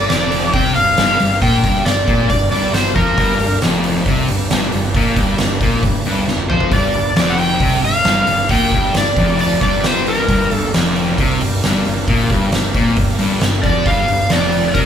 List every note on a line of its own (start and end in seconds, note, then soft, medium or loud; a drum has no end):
0.00 3.15 A#3 medium
0.00 3.15 D4 medium
0.00 3.15 G4 medium
0.00 3.15 A#4 medium
0.09 0.52 F1 medium
0.09 0.53 F2 medium
0.09 0.51 D5 medium
0.09 snare medium
0.09 open hi-hat medium
0.32 open hi-hat medium
0.53 0.74 C2 medium
0.53 0.76 C3 loud
0.53 0.75 G5 loud
0.53 kick loud
0.53 open hi-hat medium
0.75 0.97 G1 medium
0.75 0.94 G2 medium
0.75 1.42 F5 loud
0.75 open hi-hat medium
0.97 1.19 G1 medium
0.97 1.19 G2 loud
0.97 snare medium
0.97 open hi-hat medium
1.20 1.41 G1 medium
1.20 1.38 G2 medium
1.20 open hi-hat medium
1.41 1.63 A#1 medium
1.41 1.63 A#2 loud
1.41 1.88 G5 loud
1.41 kick medium
1.41 open hi-hat medium
1.64 1.85 G1 medium
1.64 1.84 G2 medium
1.64 kick loud
1.64 open hi-hat medium
1.85 2.07 G1 medium
1.85 2.04 G2 medium
1.85 2.29 D5 medium
1.85 snare loud
1.85 open hi-hat medium
2.08 2.28 A#1 medium
2.08 2.29 A#2 loud
2.08 kick loud
2.08 open hi-hat soft
2.30 2.51 G1 medium
2.30 2.48 G2 medium
2.30 2.50 D5 medium
2.30 kick medium
2.30 open hi-hat medium
2.51 2.73 G1 medium
2.51 2.73 G2 medium
2.51 2.75 D5 medium
2.51 open hi-hat soft
2.74 2.95 G1 medium
2.74 2.92 G2 medium
2.74 2.96 C5 medium
2.74 snare medium
2.74 open hi-hat medium
2.95 3.17 F2 medium
2.95 3.17 F3 loud
2.95 3.58 A#4 medium
2.95 kick loud
2.95 open hi-hat soft
3.18 3.39 G1 medium
3.18 3.39 G2 loud
3.18 3.33 B3 medium
3.18 3.34 D#4 medium
3.18 3.33 G#4 medium
3.18 kick medium
3.18 open hi-hat medium
3.33 6.69 A#3 medium
3.33 6.69 D4 medium
3.33 6.69 G4 medium
3.40 3.61 G1 medium
3.40 3.58 G2 medium
3.40 open hi-hat medium
3.62 4.04 F1 medium
3.62 4.06 F2 loud
3.62 snare loud
3.62 open hi-hat medium
3.84 open hi-hat medium
4.06 4.27 C2 medium
4.06 4.28 C3 loud
4.06 kick loud
4.06 open hi-hat medium
4.28 4.49 G1 medium
4.28 4.46 G2 medium
4.28 open hi-hat medium
4.50 4.72 G1 loud
4.50 4.72 G2 loud
4.50 snare loud
4.50 open hi-hat medium
4.72 4.94 G1 medium
4.72 4.91 G2 medium
4.72 open hi-hat medium
4.95 5.15 A#1 medium
4.95 5.17 A#2 loud
4.95 kick loud
4.95 open hi-hat medium
5.16 5.37 G1 medium
5.16 5.38 G2 medium
5.16 kick loud
5.16 open hi-hat medium
5.38 5.60 G1 medium
5.38 5.57 G2 medium
5.38 snare loud
5.38 open hi-hat medium
5.61 5.82 A#1 loud
5.61 5.83 A#2 loud
5.61 kick loud
5.61 open hi-hat medium
5.83 6.04 G1 medium
5.83 6.01 G2 medium
5.83 kick medium
5.83 open hi-hat medium
6.05 6.26 G1 medium
6.05 6.26 G2 medium
6.05 open hi-hat medium
6.28 6.48 G1 medium
6.28 6.45 G2 medium
6.28 snare medium
6.38 high tom medium
6.50 6.71 F2 medium
6.50 6.72 F3 medium
6.50 6.70 C5 medium
6.50 mid tom medium
6.60 floor tom medium
6.71 6.93 G1 medium
6.71 6.94 G2 loud
6.71 10.25 A#3 medium
6.71 10.25 D4 medium
6.71 10.26 G4 medium
6.71 10.25 A#4 medium
6.71 7.16 D5 medium
6.71 kick loud
6.71 open hi-hat medium
6.94 7.15 G1 medium
6.94 7.13 G2 medium
6.94 open hi-hat medium
7.16 7.58 F1 medium
7.16 7.60 F2 medium
7.16 7.32 D5 medium
7.16 snare loud
7.16 open hi-hat medium
7.30 7.38 F#5 medium
7.38 7.81 G5 medium
7.38 open hi-hat medium
7.60 7.81 C2 medium
7.60 7.83 C3 loud
7.60 kick medium
7.60 open hi-hat medium
7.82 8.03 G1 medium
7.82 8.01 G2 medium
7.82 8.50 F5 loud
7.82 open hi-hat medium
8.05 8.26 G1 medium
8.05 8.27 G2 loud
8.05 snare loud
8.05 open hi-hat medium
8.27 8.48 G1 medium
8.27 8.46 G2 medium
8.27 open hi-hat medium
8.49 8.71 A#1 medium
8.49 8.72 A#2 loud
8.49 8.97 G5 medium
8.49 kick medium
8.49 open hi-hat medium
8.72 8.93 G1 medium
8.72 8.94 G2 loud
8.72 kick loud
8.72 open hi-hat medium
8.94 9.15 G1 medium
8.94 9.13 G2 medium
8.94 9.38 D5 medium
8.94 snare medium
8.94 open hi-hat medium
9.17 9.59 F1 medium
9.17 9.61 F2 medium
9.17 kick loud
9.17 open hi-hat medium
9.39 9.62 D5 loud
9.39 open hi-hat medium
9.61 10.25 G1 medium
9.61 10.28 G2 medium
9.61 9.85 D5 medium
9.61 kick loud
9.61 open hi-hat medium
9.84 10.08 C5 medium
9.84 snare loud
9.84 open hi-hat medium
10.07 10.52 A#4 medium
10.07 open hi-hat medium
10.27 10.50 G1 medium
10.27 10.51 G2 loud
10.27 13.83 A#3 medium
10.27 13.83 D4 medium
10.27 13.83 G4 medium
10.27 13.82 A#4 medium
10.27 kick loud
10.27 open hi-hat medium
10.51 10.72 G1 medium
10.51 10.69 G2 medium
10.51 10.70 A4 medium
10.51 open hi-hat medium
10.74 11.16 F1 medium
10.74 11.18 F2 loud
10.74 snare loud
10.74 open hi-hat medium
10.96 open hi-hat soft
11.18 11.39 C2 medium
11.18 11.40 C3 loud
11.18 kick loud
11.18 open hi-hat medium
11.41 11.62 G1 medium
11.41 11.59 G2 medium
11.41 open hi-hat medium
11.63 11.85 G1 medium
11.63 11.85 G2 loud
11.63 snare loud
11.63 open hi-hat medium
11.85 12.07 G1 medium
11.85 12.04 G2 medium
11.85 open hi-hat medium
12.08 12.29 A#1 medium
12.08 12.30 A#2 loud
12.08 kick medium
12.08 open hi-hat medium
12.30 12.51 G1 medium
12.30 12.51 G2 medium
12.30 kick loud
12.30 open hi-hat medium
12.52 12.74 G1 medium
12.52 12.70 G2 medium
12.52 snare loud
12.52 open hi-hat medium
12.74 12.96 A#1 medium
12.74 12.97 A#2 medium
12.74 kick loud
12.74 open hi-hat medium
12.97 13.18 G1 medium
12.97 13.15 G2 medium
12.97 kick medium
12.97 open hi-hat medium
13.09 snare soft
13.19 13.41 G1 medium
13.19 13.41 G2 medium
13.19 open hi-hat medium
13.41 13.63 G1 medium
13.41 13.60 G2 medium
13.41 snare loud
13.41 open hi-hat medium
13.63 13.85 F2 medium
13.63 13.86 F3 medium
13.63 13.87 D5 medium
13.63 kick loud
13.63 open hi-hat medium
13.86 14.07 G1 medium
13.86 14.07 G2 loud
13.86 14.86 D4 medium
13.86 14.86 G4 medium
13.86 14.86 A#4 medium
13.86 14.33 F5 medium
13.86 kick loud
13.86 open hi-hat medium
14.08 14.30 G1 medium
14.08 14.26 G2 medium
14.08 open hi-hat medium
14.30 14.73 F1 medium
14.30 14.75 F2 medium
14.30 14.73 D5 medium
14.30 snare medium
14.30 open hi-hat medium
14.52 open hi-hat medium
14.74 14.86 C2 medium
14.74 14.86 C3 loud
14.74 14.79 A#4 medium
14.74 kick medium
14.74 open hi-hat medium